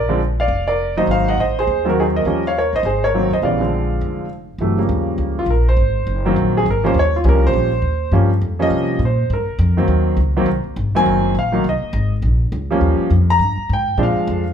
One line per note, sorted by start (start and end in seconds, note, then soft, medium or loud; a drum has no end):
0.00 0.47 A#1 medium
0.00 0.20 A#4 medium
0.00 0.19 D5 medium
0.09 0.19 D3 medium
0.09 0.19 F3 medium
0.09 0.19 G#3 medium
0.09 0.19 C4 medium
0.40 0.66 D5 medium
0.40 0.69 F5 medium
0.48 1.05 F1 medium
0.68 0.96 A#4 medium
0.68 0.95 D5 medium
0.97 1.35 D#3 medium
0.97 1.35 F#3 medium
0.97 1.36 A#3 medium
0.97 1.36 D#4 medium
0.97 1.08 C5 medium
0.97 1.09 D#5 medium
1.07 1.35 G#1 medium
1.07 1.28 F5 medium
1.12 1.27 C5 medium
1.28 1.39 D#5 medium
1.28 1.39 F#5 medium
1.37 1.65 A1 medium
1.37 1.56 C5 medium
1.37 1.57 D#5 medium
1.59 1.85 G#4 medium
1.59 1.85 C5 medium
1.67 2.23 D#2 medium
1.85 2.23 D#3 medium
1.85 2.23 F#3 medium
1.85 2.23 A#3 medium
1.85 2.23 C4 medium
1.89 1.98 F#4 medium
1.89 1.99 A#4 medium
2.00 2.05 D#4 medium
2.00 2.05 G#4 medium
2.16 2.43 A#4 medium
2.16 2.43 D#5 medium
2.25 2.69 D#2 medium
2.25 2.42 F3 medium
2.25 2.42 G3 medium
2.25 2.42 A#3 soft
2.25 2.42 C#4 medium
2.47 2.56 C#5 medium
2.47 2.56 F5 medium
2.58 2.73 A#4 medium
2.58 2.74 C#5 medium
2.73 2.82 A1 medium
2.73 2.84 C5 medium
2.73 2.85 D#5 medium
2.83 3.28 G#1 medium
2.83 3.02 G#4 medium
2.83 3.03 C5 medium
3.04 3.31 A#4 medium
3.04 3.33 C#5 medium
3.14 3.30 D#3 medium
3.14 3.30 F#3 medium
3.14 3.30 A#3 medium
3.14 3.30 C4 medium
3.30 3.41 F2 medium
3.30 3.43 C5 medium
3.30 3.44 D#5 medium
3.42 3.98 A#1 medium
3.42 3.59 C#3 soft
3.42 3.59 E3 soft
3.42 3.59 G3 soft
3.42 3.59 B3 medium
3.42 4.28 D5 medium
3.42 4.27 F5 medium
3.60 4.24 D3 soft
3.60 4.24 F3 soft
3.60 4.24 G#3 soft
3.60 4.24 C4 medium
4.01 4.57 F1 medium
4.58 4.88 G1 medium
4.58 4.77 C3 soft
4.58 4.77 E3 soft
4.58 4.77 F#3 soft
4.58 4.77 A3 medium
4.78 5.42 C#3 soft
4.78 5.42 F3 soft
4.78 5.42 G3 soft
4.78 5.42 A#3 medium
4.89 5.17 D#2 medium
5.18 5.45 C#2 medium
5.39 5.49 F4 medium
5.46 5.76 A#1 medium
5.50 5.67 A#4 medium
5.69 6.34 C5 medium
5.76 6.06 G#1 medium
6.07 6.35 F#1 medium
6.25 6.64 D#3 medium
6.25 6.64 F#3 medium
6.25 6.64 A#3 medium
6.25 6.64 C4 medium
6.36 6.65 A#1 medium
6.57 6.67 G#4 medium
6.66 6.94 G#1 medium
6.71 6.86 A#4 medium
6.84 6.94 F3 medium
6.84 6.94 G3 medium
6.84 6.94 A#3 medium
6.84 6.94 C#4 medium
6.84 6.96 C5 medium
6.94 7.23 D#2 medium
6.99 7.15 C#5 medium
7.16 7.26 F4 medium
7.24 7.53 C2 medium
7.24 7.68 F3 medium
7.24 7.69 G3 medium
7.24 7.69 A#3 medium
7.24 7.69 C#4 medium
7.29 7.44 A#4 medium
7.47 8.11 C5 loud
7.54 7.81 A#1 medium
7.82 8.11 D#2 medium
8.12 8.41 G2 medium
8.12 8.29 F3 medium
8.12 8.29 G3 medium
8.12 8.29 A#3 medium
8.12 8.29 C#4 medium
8.41 8.70 F2 medium
8.59 8.98 F3 medium
8.59 8.98 G3 medium
8.59 8.98 A#3 medium
8.59 8.98 C#4 medium
8.59 8.99 D#5 medium
8.70 8.99 C3 medium
8.99 9.28 A#2 medium
9.05 9.30 C5 medium
9.30 9.47 G#2 medium
9.30 9.76 A#4 medium
9.49 muted upright bass stroke soft
9.59 9.87 F2 medium
9.77 10.16 D#3 medium
9.77 10.16 F#3 medium
9.77 10.16 A#3 medium
9.77 10.16 C4 medium
9.88 10.16 D#2 medium
10.17 10.45 C#2 medium
10.37 10.47 D#3 medium
10.37 10.47 F#3 medium
10.37 10.47 A#3 medium
10.37 10.47 C4 medium
10.46 10.63 C2 medium
10.64 muted upright bass stroke soft
10.76 10.93 G#1 medium
10.94 11.33 D#3 medium
10.94 11.34 F#3 medium
10.94 11.33 A#3 medium
10.94 11.34 C4 medium
10.94 11.33 G#5 loud
10.94 muted upright bass stroke soft
11.06 11.34 F#1 medium
11.35 11.63 A#1 medium
11.39 11.64 F5 medium
11.52 11.63 D#3 medium
11.52 11.63 F#3 medium
11.52 11.64 A#3 medium
11.52 11.64 D#4 medium
11.64 11.81 C2 medium
11.69 12.11 D#5 medium
11.83 muted upright bass stroke soft
11.93 12.22 G#1 medium
12.22 12.51 A#1 medium
12.52 12.80 C#2 medium
12.71 13.09 F3 medium
12.71 13.09 G3 medium
12.71 13.09 A#3 medium
12.71 13.10 C#4 medium
12.81 12.98 D#2 medium
13.00 muted upright bass stroke soft
13.10 13.39 F2 medium
13.30 13.68 A#5 loud
13.39 13.57 G2 medium
13.58 muted upright bass stroke soft
13.69 13.97 G#2 medium
13.69 13.99 G5 medium
13.97 14.15 A#2 medium
13.97 14.42 F3 medium
13.97 14.42 G#3 medium
13.97 14.43 C4 medium
13.97 14.43 D4 medium
14.03 14.45 F5 medium
14.16 muted upright bass stroke soft
14.27 14.53 F2 medium